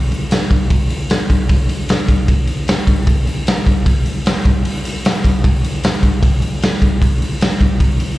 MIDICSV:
0, 0, Header, 1, 2, 480
1, 0, Start_track
1, 0, Tempo, 394737
1, 1809, Time_signature, 4, 2, 24, 8
1, 9947, End_track
2, 0, Start_track
2, 0, Title_t, "Drums"
2, 143, Note_on_c, 9, 46, 51
2, 265, Note_off_c, 9, 46, 0
2, 376, Note_on_c, 9, 46, 69
2, 391, Note_on_c, 9, 38, 102
2, 498, Note_off_c, 9, 46, 0
2, 512, Note_off_c, 9, 38, 0
2, 617, Note_on_c, 9, 36, 88
2, 620, Note_on_c, 9, 46, 54
2, 738, Note_off_c, 9, 36, 0
2, 742, Note_off_c, 9, 46, 0
2, 856, Note_on_c, 9, 36, 106
2, 857, Note_on_c, 9, 46, 73
2, 978, Note_off_c, 9, 36, 0
2, 979, Note_off_c, 9, 46, 0
2, 1097, Note_on_c, 9, 46, 57
2, 1219, Note_off_c, 9, 46, 0
2, 1335, Note_on_c, 9, 46, 78
2, 1349, Note_on_c, 9, 38, 105
2, 1456, Note_off_c, 9, 46, 0
2, 1471, Note_off_c, 9, 38, 0
2, 1579, Note_on_c, 9, 36, 83
2, 1579, Note_on_c, 9, 46, 60
2, 1701, Note_off_c, 9, 36, 0
2, 1701, Note_off_c, 9, 46, 0
2, 1814, Note_on_c, 9, 46, 79
2, 1818, Note_on_c, 9, 36, 102
2, 1936, Note_off_c, 9, 46, 0
2, 1940, Note_off_c, 9, 36, 0
2, 2058, Note_on_c, 9, 46, 58
2, 2180, Note_off_c, 9, 46, 0
2, 2297, Note_on_c, 9, 46, 78
2, 2312, Note_on_c, 9, 38, 102
2, 2419, Note_off_c, 9, 46, 0
2, 2433, Note_off_c, 9, 38, 0
2, 2533, Note_on_c, 9, 46, 60
2, 2535, Note_on_c, 9, 36, 85
2, 2655, Note_off_c, 9, 46, 0
2, 2657, Note_off_c, 9, 36, 0
2, 2776, Note_on_c, 9, 36, 102
2, 2778, Note_on_c, 9, 46, 75
2, 2898, Note_off_c, 9, 36, 0
2, 2899, Note_off_c, 9, 46, 0
2, 3008, Note_on_c, 9, 46, 60
2, 3129, Note_off_c, 9, 46, 0
2, 3257, Note_on_c, 9, 46, 74
2, 3272, Note_on_c, 9, 38, 111
2, 3379, Note_off_c, 9, 46, 0
2, 3393, Note_off_c, 9, 38, 0
2, 3494, Note_on_c, 9, 36, 87
2, 3495, Note_on_c, 9, 46, 58
2, 3615, Note_off_c, 9, 36, 0
2, 3617, Note_off_c, 9, 46, 0
2, 3734, Note_on_c, 9, 36, 108
2, 3734, Note_on_c, 9, 46, 73
2, 3856, Note_off_c, 9, 36, 0
2, 3856, Note_off_c, 9, 46, 0
2, 3976, Note_on_c, 9, 46, 54
2, 4098, Note_off_c, 9, 46, 0
2, 4219, Note_on_c, 9, 46, 71
2, 4234, Note_on_c, 9, 38, 113
2, 4341, Note_off_c, 9, 46, 0
2, 4355, Note_off_c, 9, 38, 0
2, 4457, Note_on_c, 9, 36, 85
2, 4460, Note_on_c, 9, 46, 53
2, 4578, Note_off_c, 9, 36, 0
2, 4581, Note_off_c, 9, 46, 0
2, 4696, Note_on_c, 9, 36, 103
2, 4696, Note_on_c, 9, 46, 72
2, 4817, Note_off_c, 9, 36, 0
2, 4818, Note_off_c, 9, 46, 0
2, 4934, Note_on_c, 9, 46, 53
2, 5056, Note_off_c, 9, 46, 0
2, 5178, Note_on_c, 9, 46, 74
2, 5192, Note_on_c, 9, 38, 112
2, 5299, Note_off_c, 9, 46, 0
2, 5314, Note_off_c, 9, 38, 0
2, 5412, Note_on_c, 9, 46, 53
2, 5415, Note_on_c, 9, 36, 105
2, 5534, Note_off_c, 9, 46, 0
2, 5536, Note_off_c, 9, 36, 0
2, 5656, Note_on_c, 9, 46, 72
2, 5778, Note_off_c, 9, 46, 0
2, 5899, Note_on_c, 9, 46, 59
2, 6020, Note_off_c, 9, 46, 0
2, 6140, Note_on_c, 9, 46, 77
2, 6154, Note_on_c, 9, 38, 106
2, 6261, Note_off_c, 9, 46, 0
2, 6276, Note_off_c, 9, 38, 0
2, 6378, Note_on_c, 9, 36, 84
2, 6385, Note_on_c, 9, 46, 59
2, 6499, Note_off_c, 9, 36, 0
2, 6507, Note_off_c, 9, 46, 0
2, 6618, Note_on_c, 9, 36, 106
2, 6623, Note_on_c, 9, 46, 73
2, 6739, Note_off_c, 9, 36, 0
2, 6745, Note_off_c, 9, 46, 0
2, 6863, Note_on_c, 9, 46, 61
2, 6985, Note_off_c, 9, 46, 0
2, 7096, Note_on_c, 9, 46, 77
2, 7110, Note_on_c, 9, 38, 108
2, 7217, Note_off_c, 9, 46, 0
2, 7232, Note_off_c, 9, 38, 0
2, 7331, Note_on_c, 9, 46, 59
2, 7332, Note_on_c, 9, 36, 87
2, 7453, Note_off_c, 9, 36, 0
2, 7453, Note_off_c, 9, 46, 0
2, 7571, Note_on_c, 9, 36, 107
2, 7574, Note_on_c, 9, 46, 76
2, 7693, Note_off_c, 9, 36, 0
2, 7696, Note_off_c, 9, 46, 0
2, 7807, Note_on_c, 9, 46, 58
2, 7928, Note_off_c, 9, 46, 0
2, 8055, Note_on_c, 9, 46, 70
2, 8069, Note_on_c, 9, 38, 106
2, 8176, Note_off_c, 9, 46, 0
2, 8191, Note_off_c, 9, 38, 0
2, 8291, Note_on_c, 9, 36, 85
2, 8295, Note_on_c, 9, 46, 54
2, 8412, Note_off_c, 9, 36, 0
2, 8416, Note_off_c, 9, 46, 0
2, 8532, Note_on_c, 9, 36, 108
2, 8539, Note_on_c, 9, 46, 69
2, 8654, Note_off_c, 9, 36, 0
2, 8660, Note_off_c, 9, 46, 0
2, 8779, Note_on_c, 9, 46, 56
2, 8900, Note_off_c, 9, 46, 0
2, 9013, Note_on_c, 9, 46, 74
2, 9028, Note_on_c, 9, 38, 112
2, 9135, Note_off_c, 9, 46, 0
2, 9150, Note_off_c, 9, 38, 0
2, 9249, Note_on_c, 9, 36, 88
2, 9256, Note_on_c, 9, 46, 54
2, 9371, Note_off_c, 9, 36, 0
2, 9378, Note_off_c, 9, 46, 0
2, 9488, Note_on_c, 9, 36, 108
2, 9490, Note_on_c, 9, 46, 75
2, 9610, Note_off_c, 9, 36, 0
2, 9611, Note_off_c, 9, 46, 0
2, 9727, Note_on_c, 9, 46, 59
2, 9848, Note_off_c, 9, 46, 0
2, 9947, End_track
0, 0, End_of_file